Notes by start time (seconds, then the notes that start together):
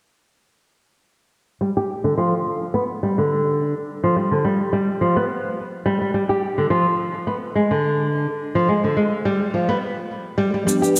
1.61 G3
1.77 G4
2.04 D3
2.18 F3
2.74 B3
3.03 G3
3.18 D3
4.04 F3
4.16 G3
4.31 D3
4.45 G3
4.73 G3
5.01 F3
5.17 B3
5.86 G3
6.01 G3
6.14 G3
6.29 G4
6.58 D3
6.70 F3
7.27 B3
7.55 G#3
7.71 D3
8.55 F3
8.68 G#3
8.84 D3
8.97 G#3
9.25 G3
9.54 F3
9.69 B3
10.38 G3
10.54 G3
10.65 F3 G3 B3 D4 G4 B4, shaker
10.69 G4
10.82 G4, shaker
10.96 shaker